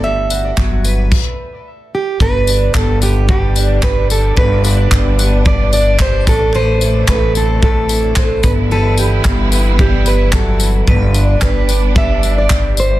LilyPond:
<<
  \new Staff \with { instrumentName = "Steel-string acoustic guitar" } { \time 4/4 \key g \major \tempo 4 = 111 e''2. r8 g'8 | b'4 a'8 g'8 g'4 b'8 a'8 | b'8 b'4. d''8 d''8 c''8 a'8 | c''4 b'8 a'8 a'4 c''8 b'8 |
a'8 g'4. g'8 b'8 a'8. r16 | r4 b'4 e''8. d''8. c''8 | }
  \new Staff \with { instrumentName = "Twelve-string acoustic guitar" } { \time 4/4 \key g \major g,8 fis'8 fis8 b'8 r2 | <g, b'>8 d'8 g8 b8 g,8 d'8 g4 | <g, b'>8 d'8 g8 b8 g,8 d'8 g8 a,8 | <a, b'>8 e'8 a8 c'8 a,8 e'4 g,8 |
<g, b'>8 e'4 b8 g,8 e'8 fis4 | <g, b'>8 d'8 g8 b8 g,8 d'8 g4 | }
  \new Staff \with { instrumentName = "String section" } { \clef bass \time 4/4 \key g \major << { r1 | d'1~ | d'1~ | d'2.~ d'8 e'8~ |
e'1 | d'1 | } \\ { r1 | <d g>1~ | <d g>2.~ <d g>8 <c a>8~ | <c a>2.~ <c a>8 <e b>8~ |
<e b>1 | g1 | } >> }
  \new Staff \with { instrumentName = "Upright bass" } { \clef bass \time 4/4 \key g \major g,,4 g,,4 r2 | g,,4 g,,2. | g,,4 g,,2~ g,,8 a,,8~ | a,,4 a,,2~ a,,8 g,,8~ |
g,,4 g,,2. | g,,4 g,,2. | }
  \new DrumStaff \with { instrumentName = "Drums" } \drummode { \time 4/4 r8 tamb8 <hc bd>8 tamb8 <cymc bd>4 r4 | bd8 tamb8 <hc bd>8 tamb8 bd8 tamb8 <hc bd>8 tamb8 | bd8 tamb8 <hc bd>8 tamb8 bd8 tamb8 <hc bd>8 <bd tamb>8 | r8 tamb8 <hc bd>8 tamb8 bd8 tamb8 <hc bd>8 <bd tamb>8 |
r8 tamb8 <hc bd>8 tamb8 bd8 tamb8 <hc bd>8 tamb8 | bd8 tamb8 <hc bd>8 tamb8 bd8 tamb8 <hc bd>8 tamb8 | }
>>